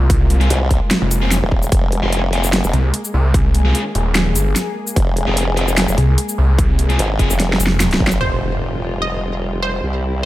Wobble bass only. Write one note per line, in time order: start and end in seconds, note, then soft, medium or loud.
0.50 0.80 C2 loud
1.42 1.71 D#1 medium
1.72 2.01 F1 loud
2.03 2.62 F1 loud
2.64 2.72 F1 loud
4.96 5.26 F1 loud
5.28 5.87 F1 loud
5.88 5.96 F1 loud
6.99 7.18 G#1 medium
7.30 7.58 F1 loud
8.00 8.19 G#1 medium
8.21 9.81 F1 medium
9.83 10.25 C2 medium